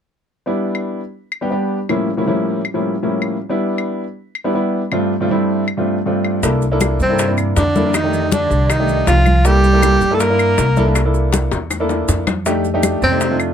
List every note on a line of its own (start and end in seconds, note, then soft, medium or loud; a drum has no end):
0.46 0.99 G3 medium
0.46 1.00 B3 medium
0.46 1.00 D4 medium
0.46 1.00 E4 medium
0.75 claves medium
1.32 claves medium
1.41 1.48 G3 medium
1.41 1.48 B3 medium
1.41 1.48 D4 medium
1.41 1.48 G4 medium
1.50 1.77 G3 medium
1.50 1.77 B3 medium
1.50 1.78 D4 medium
1.50 1.78 G4 medium
1.89 2.09 A2 medium
1.89 2.09 F3 medium
1.89 2.09 G3 medium
1.89 2.09 A#3 medium
1.89 2.09 C#4 medium
1.89 2.09 E4 medium
1.89 claves medium
2.17 2.24 A2 medium
2.17 2.24 F3 medium
2.17 2.24 G3 medium
2.17 2.24 A#3 medium
2.17 2.24 C#4 medium
2.17 2.24 E4 medium
2.26 2.60 A2 medium
2.26 2.60 F3 medium
2.26 2.60 G3 medium
2.26 2.60 A#3 medium
2.26 2.60 C#4 medium
2.26 2.60 E4 medium
2.65 claves medium
2.74 2.94 A2 medium
2.74 2.94 F3 medium
2.74 2.94 G3 medium
2.74 2.94 A#3 medium
2.74 2.94 C#4 medium
2.74 2.94 E4 medium
3.03 3.36 A2 medium
3.03 3.36 F3 medium
3.03 3.36 G3 medium
3.03 3.36 A#3 medium
3.03 3.36 C#4 medium
3.03 3.36 E4 medium
3.22 claves medium
3.49 4.03 G3 medium
3.49 4.03 B3 medium
3.49 4.03 D4 medium
3.49 4.03 E4 medium
3.78 claves medium
4.35 claves medium
4.44 4.51 G3 medium
4.44 4.51 B3 medium
4.44 4.52 D4 medium
4.44 4.52 E4 medium
4.54 4.81 G3 medium
4.54 4.81 B3 medium
4.54 4.81 D4 medium
4.54 4.81 E4 medium
4.92 5.12 G2 medium
4.92 5.12 A3 medium
4.92 5.12 C4 medium
4.92 5.12 D4 medium
4.92 5.12 F4 medium
4.92 claves medium
5.20 5.27 G2 medium
5.20 5.27 A3 medium
5.20 5.27 C4 medium
5.20 5.28 D4 medium
5.20 5.28 F4 medium
5.30 5.63 G2 medium
5.30 5.63 A3 medium
5.30 5.63 C4 medium
5.30 5.63 D4 medium
5.30 5.64 E4 medium
5.68 claves medium
5.77 5.97 G2 medium
5.77 5.97 A3 medium
5.77 5.97 C4 medium
5.77 5.97 D4 medium
5.77 5.98 F4 medium
6.06 6.39 G2 medium
6.06 6.39 A3 medium
6.06 6.39 C4 medium
6.06 6.39 D4 medium
6.06 6.39 F4 medium
6.25 claves medium
6.43 6.96 C2 medium
6.43 6.63 A#3 medium
6.43 6.63 D4 medium
6.43 6.63 E4 medium
6.43 6.64 A4 medium
6.43 high bongo medium
6.43 high conga soft
6.43 maracas medium
6.62 high bongo soft
6.62 high conga soft
6.62 maracas soft
6.71 6.98 A#3 medium
6.71 6.98 D4 medium
6.71 6.98 E4 medium
6.71 6.99 A4 medium
6.81 high bongo medium
6.81 high conga medium
6.81 claves medium
6.81 maracas medium
7.00 7.52 G2 medium
7.00 7.36 C3 medium
7.00 7.36 C4 medium
7.00 high bongo soft
7.00 high conga soft
7.00 maracas soft
7.09 7.23 A#3 medium
7.09 7.23 D4 medium
7.09 7.23 E4 medium
7.09 7.23 A4 medium
7.19 high bongo medium
7.19 high conga soft
7.19 maracas medium
7.28 7.61 A#3 medium
7.28 7.61 D4 medium
7.28 7.61 E4 medium
7.28 7.62 A#4 medium
7.38 high conga soft
7.38 claves medium
7.38 maracas soft
7.56 8.45 F2 medium
7.56 7.96 D3 medium
7.56 7.96 D4 medium
7.56 high bongo medium
7.56 low bongo medium
7.56 high conga soft
7.56 maracas medium
7.75 7.82 A#3 medium
7.75 7.82 D4 medium
7.75 7.82 E4 medium
7.75 7.82 A4 medium
7.75 high bongo soft
7.75 high conga medium
7.75 maracas soft
7.85 7.94 A#3 medium
7.85 7.94 D4 medium
7.85 7.95 E4 medium
7.85 7.95 A#4 medium
7.94 8.32 D#3 medium
7.94 8.32 D#4 medium
7.94 high bongo medium
7.94 high conga soft
7.94 claves medium
7.94 maracas medium
8.03 8.56 A3 medium
8.03 8.56 D4 medium
8.03 8.57 D#4 medium
8.03 8.57 G4 medium
8.13 high bongo soft
8.13 high conga soft
8.13 maracas soft
8.32 8.71 D3 medium
8.32 8.72 D4 medium
8.32 high bongo medium
8.32 high conga loud
8.32 maracas medium
8.50 9.03 C2 medium
8.50 high bongo soft
8.50 high conga soft
8.50 maracas soft
8.69 9.06 D#3 medium
8.69 9.07 D#4 medium
8.69 high bongo medium
8.69 high conga soft
8.69 claves medium
8.69 maracas medium
8.79 9.25 A3 medium
8.79 9.25 D4 medium
8.79 9.25 D#4 medium
8.79 9.26 G4 medium
8.89 high bongo soft
8.89 high conga soft
8.89 maracas soft
9.07 9.95 C2 medium
9.07 9.46 F3 medium
9.07 9.48 F4 medium
9.07 high bongo medium
9.07 low bongo medium
9.07 high conga soft
9.07 maracas medium
9.26 high conga medium
9.26 claves medium
9.26 maracas soft
9.45 10.14 G3 medium
9.45 9.65 A#3 medium
9.45 9.65 D4 medium
9.45 9.65 E4 medium
9.45 10.16 G4 loud
9.45 9.65 A4 medium
9.45 high bongo medium
9.45 maracas medium
9.64 high bongo soft
9.64 high conga soft
9.64 maracas soft
9.73 9.99 A#3 medium
9.73 10.00 D4 medium
9.73 10.00 E4 medium
9.73 10.00 A4 medium
9.83 high bongo medium
9.83 high conga medium
9.83 claves medium
9.83 maracas medium
10.01 10.54 G2 medium
10.01 high bongo soft
10.01 high conga soft
10.01 maracas soft
10.11 10.21 A3 medium
10.11 10.24 A#3 medium
10.11 10.24 D4 medium
10.11 10.24 E4 medium
10.11 10.24 A4 medium
10.11 10.22 A4 medium
10.19 10.95 A#3 medium
10.19 10.96 A#4 medium
10.19 high bongo medium
10.19 high conga soft
10.19 maracas medium
10.30 10.63 A#3 medium
10.30 10.63 D4 medium
10.30 10.63 E4 medium
10.30 10.63 A#4 medium
10.39 high conga soft
10.39 claves medium
10.39 maracas soft
10.58 11.46 C2 medium
10.58 high bongo medium
10.58 low bongo medium
10.58 high conga soft
10.58 maracas medium
10.77 10.83 A#3 medium
10.77 10.83 D4 medium
10.77 10.84 E4 medium
10.77 10.84 A4 loud
10.77 high bongo soft
10.77 high conga medium
10.77 maracas soft
10.86 10.99 A#3 medium
10.86 11.00 D4 medium
10.86 11.00 E4 medium
10.86 11.00 A4 medium
10.95 high bongo medium
10.95 high conga soft
10.95 claves medium
10.95 maracas medium
11.05 11.57 A#3 medium
11.05 11.58 D4 medium
11.05 11.58 E4 medium
11.05 11.58 A4 medium
11.14 high bongo soft
11.14 high conga soft
11.14 maracas soft
11.33 high bongo medium
11.33 high conga medium
11.33 maracas medium
11.52 12.04 E2 medium
11.52 high bongo loud
11.52 high conga soft
11.52 maracas soft
11.70 low bongo medium
11.70 high conga soft
11.70 claves medium
11.70 maracas medium
11.80 12.26 A#3 medium
11.80 12.26 D4 medium
11.80 12.26 E4 medium
11.80 12.27 A4 medium
11.89 low bongo medium
11.89 high conga soft
11.89 maracas soft
12.08 12.96 F2 medium
12.08 low bongo medium
12.08 high conga soft
12.08 maracas medium
12.27 low bongo medium
12.27 high conga medium
12.27 claves medium
12.27 maracas soft
12.46 12.66 A3 medium
12.46 12.66 D4 medium
12.46 12.66 D#4 medium
12.46 12.66 G4 medium
12.46 high bongo medium
12.46 high conga soft
12.46 maracas medium
12.65 high bongo soft
12.65 high conga soft
12.65 maracas soft
12.74 13.00 A3 medium
12.74 13.00 D4 medium
12.74 13.01 D#4 medium
12.74 13.01 G4 medium
12.83 high bongo medium
12.83 high conga medium
12.83 claves medium
12.83 maracas medium
13.02 13.54 F2 medium
13.02 13.37 C3 medium
13.02 13.38 C4 medium
13.02 high bongo soft
13.02 high conga soft
13.02 maracas soft
13.11 13.25 A3 medium
13.11 13.25 D4 medium
13.11 13.25 D#4 medium
13.11 13.25 G4 medium
13.21 high bongo medium
13.21 high conga soft
13.21 maracas medium
13.31 13.54 A3 medium
13.31 13.54 D4 medium
13.31 13.54 D#4 medium
13.31 13.54 F4 medium
13.40 high conga soft
13.40 claves medium
13.40 maracas soft